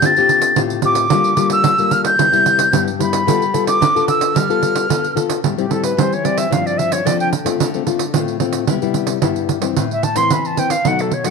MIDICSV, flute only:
0, 0, Header, 1, 2, 480
1, 0, Start_track
1, 0, Tempo, 541516
1, 985, Time_signature, 4, 2, 24, 8
1, 10018, End_track
2, 0, Start_track
2, 0, Title_t, "Flute"
2, 0, Program_c, 0, 73
2, 47, Note_on_c, 0, 93, 100
2, 516, Note_off_c, 0, 93, 0
2, 754, Note_on_c, 0, 86, 99
2, 1313, Note_off_c, 0, 86, 0
2, 1348, Note_on_c, 0, 88, 106
2, 1700, Note_on_c, 0, 89, 107
2, 1714, Note_off_c, 0, 88, 0
2, 1814, Note_off_c, 0, 89, 0
2, 1820, Note_on_c, 0, 91, 116
2, 2506, Note_off_c, 0, 91, 0
2, 2661, Note_on_c, 0, 83, 92
2, 3227, Note_off_c, 0, 83, 0
2, 3252, Note_on_c, 0, 86, 101
2, 3592, Note_off_c, 0, 86, 0
2, 3621, Note_on_c, 0, 88, 100
2, 3872, Note_on_c, 0, 89, 92
2, 3885, Note_off_c, 0, 88, 0
2, 4587, Note_off_c, 0, 89, 0
2, 4953, Note_on_c, 0, 67, 71
2, 5062, Note_on_c, 0, 69, 87
2, 5075, Note_off_c, 0, 67, 0
2, 5169, Note_on_c, 0, 71, 75
2, 5183, Note_off_c, 0, 69, 0
2, 5310, Note_on_c, 0, 72, 77
2, 5323, Note_off_c, 0, 71, 0
2, 5434, Note_on_c, 0, 73, 85
2, 5448, Note_off_c, 0, 72, 0
2, 5536, Note_on_c, 0, 74, 88
2, 5549, Note_off_c, 0, 73, 0
2, 5649, Note_on_c, 0, 76, 84
2, 5663, Note_off_c, 0, 74, 0
2, 5778, Note_on_c, 0, 77, 88
2, 5792, Note_off_c, 0, 76, 0
2, 5902, Note_on_c, 0, 74, 83
2, 5915, Note_off_c, 0, 77, 0
2, 6003, Note_on_c, 0, 76, 94
2, 6016, Note_off_c, 0, 74, 0
2, 6135, Note_on_c, 0, 73, 82
2, 6148, Note_off_c, 0, 76, 0
2, 6253, Note_on_c, 0, 74, 83
2, 6266, Note_off_c, 0, 73, 0
2, 6372, Note_off_c, 0, 74, 0
2, 6377, Note_on_c, 0, 79, 79
2, 6451, Note_off_c, 0, 79, 0
2, 8787, Note_on_c, 0, 76, 86
2, 8889, Note_on_c, 0, 81, 100
2, 8902, Note_off_c, 0, 76, 0
2, 9009, Note_on_c, 0, 84, 101
2, 9022, Note_off_c, 0, 81, 0
2, 9144, Note_on_c, 0, 83, 89
2, 9158, Note_off_c, 0, 84, 0
2, 9271, Note_on_c, 0, 81, 88
2, 9284, Note_off_c, 0, 83, 0
2, 9381, Note_on_c, 0, 79, 97
2, 9394, Note_off_c, 0, 81, 0
2, 9487, Note_on_c, 0, 77, 85
2, 9500, Note_off_c, 0, 79, 0
2, 9634, Note_on_c, 0, 78, 95
2, 9648, Note_off_c, 0, 77, 0
2, 9755, Note_on_c, 0, 69, 71
2, 9768, Note_off_c, 0, 78, 0
2, 9865, Note_on_c, 0, 73, 80
2, 9878, Note_off_c, 0, 69, 0
2, 9976, Note_on_c, 0, 78, 85
2, 9989, Note_off_c, 0, 73, 0
2, 10018, Note_off_c, 0, 78, 0
2, 10018, End_track
0, 0, End_of_file